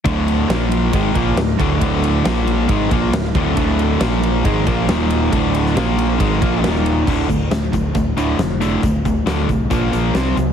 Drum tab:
CC |----------------|----------------|----------------|----------------|
RD |x-x-x-x-x-x-x-x-|x-x-x-x-x-x-x-x-|x-x-x-x-x-x-x-x-|x-x-x-x-x-x-x-x-|
HH |----------------|----------------|----------------|----------------|
SD |----o-------o---|----o-------oo--|----o-------o---|---oo-------oo--|
BD |o-------o-o---o-|o-------o-o---o-|o-------o-o-----|o-------o-o-----|

CC |x---------------|----------------|
RD |----------------|----------------|
HH |--x-x-x-x-x-x-x-|x-x-x-x-x-x-x-x-|
SD |----o-------o---|----oo------o---|
BD |o-o---o-o-------|o-o---o-o-------|